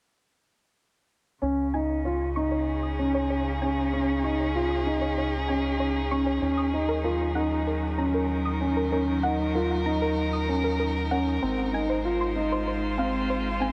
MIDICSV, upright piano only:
0, 0, Header, 1, 2, 480
1, 0, Start_track
1, 0, Key_signature, -5, "major"
1, 0, Tempo, 625000
1, 1093, Time_signature, 4, 2, 24, 8
1, 10537, End_track
2, 0, Start_track
2, 0, Title_t, "Upright piano"
2, 0, Program_c, 0, 0
2, 1088, Note_on_c, 0, 61, 72
2, 1267, Note_off_c, 0, 61, 0
2, 1335, Note_on_c, 0, 63, 57
2, 1511, Note_off_c, 0, 63, 0
2, 1579, Note_on_c, 0, 65, 64
2, 1754, Note_off_c, 0, 65, 0
2, 1818, Note_on_c, 0, 63, 65
2, 2170, Note_off_c, 0, 63, 0
2, 2297, Note_on_c, 0, 61, 62
2, 2650, Note_off_c, 0, 61, 0
2, 2779, Note_on_c, 0, 61, 61
2, 2954, Note_off_c, 0, 61, 0
2, 3020, Note_on_c, 0, 61, 73
2, 3194, Note_off_c, 0, 61, 0
2, 3253, Note_on_c, 0, 63, 58
2, 3430, Note_off_c, 0, 63, 0
2, 3495, Note_on_c, 0, 65, 70
2, 3671, Note_off_c, 0, 65, 0
2, 3737, Note_on_c, 0, 63, 64
2, 4089, Note_off_c, 0, 63, 0
2, 4219, Note_on_c, 0, 61, 61
2, 4571, Note_off_c, 0, 61, 0
2, 4694, Note_on_c, 0, 61, 68
2, 4871, Note_off_c, 0, 61, 0
2, 4931, Note_on_c, 0, 61, 75
2, 5108, Note_off_c, 0, 61, 0
2, 5170, Note_on_c, 0, 63, 64
2, 5348, Note_off_c, 0, 63, 0
2, 5407, Note_on_c, 0, 65, 68
2, 5586, Note_off_c, 0, 65, 0
2, 5646, Note_on_c, 0, 63, 63
2, 6002, Note_off_c, 0, 63, 0
2, 6127, Note_on_c, 0, 61, 64
2, 6483, Note_off_c, 0, 61, 0
2, 6610, Note_on_c, 0, 61, 63
2, 6788, Note_off_c, 0, 61, 0
2, 6851, Note_on_c, 0, 61, 74
2, 7029, Note_off_c, 0, 61, 0
2, 7096, Note_on_c, 0, 63, 60
2, 7272, Note_off_c, 0, 63, 0
2, 7337, Note_on_c, 0, 65, 73
2, 7512, Note_off_c, 0, 65, 0
2, 7571, Note_on_c, 0, 63, 66
2, 7926, Note_off_c, 0, 63, 0
2, 8053, Note_on_c, 0, 61, 59
2, 8407, Note_off_c, 0, 61, 0
2, 8535, Note_on_c, 0, 61, 63
2, 8711, Note_off_c, 0, 61, 0
2, 8775, Note_on_c, 0, 60, 73
2, 8951, Note_off_c, 0, 60, 0
2, 9008, Note_on_c, 0, 63, 62
2, 9187, Note_off_c, 0, 63, 0
2, 9253, Note_on_c, 0, 65, 68
2, 9430, Note_off_c, 0, 65, 0
2, 9492, Note_on_c, 0, 63, 67
2, 9846, Note_off_c, 0, 63, 0
2, 9967, Note_on_c, 0, 60, 66
2, 10323, Note_off_c, 0, 60, 0
2, 10446, Note_on_c, 0, 60, 68
2, 10537, Note_off_c, 0, 60, 0
2, 10537, End_track
0, 0, End_of_file